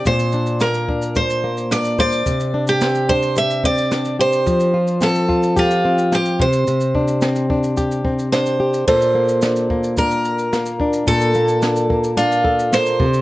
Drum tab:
CC |----------------|----------------|----------------|----------------|
SH |xxxxxx-xxx-xxxxx|xx-xxx-xxx-xxx-x|xx-xxx-xxx-xxx-x|xx-xxx-xxx-xxx-x|
SD |----o-------o---|----o-------o---|----o-------o---|----o-------o---|
BD |o-----o-o-----o-|o-----o---o-----|o-----o-o-----o-|--o---o-o-o-----|

CC |x---------------|----------------|
SH |-x-xxx-xxxxxxx-x|xxxxxx-xxx-xxx-x|
SD |----o-------o---|----o-------o---|
BD |o-----o-o-----o-|o-----o---o---o-|